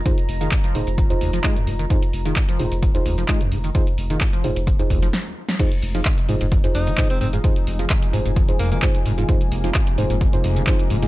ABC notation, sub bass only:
X:1
M:4/4
L:1/16
Q:1/4=130
K:Fm
V:1 name="Sub bass" clef=bass
z2 F,,,2 z2 F,,, F,,,2 z F,,,2 z2 F,,,2 | z2 F,,,2 z2 F,,, F,,,2 z F,,,2 z2 F,,,2 | z2 F,,,2 z2 F,,, F,,,2 z F,,,2 z4 | z2 F,,,2 z2 F,,, F,,,2 z F,,,2 z2 F,,,2 |
z2 F,,,2 z2 F,,, F,,,2 z F,,,2 z2 F,,,2 | z2 F,,,2 z2 F,,, F,,,2 z F,,,2 z2 F,,,2 |]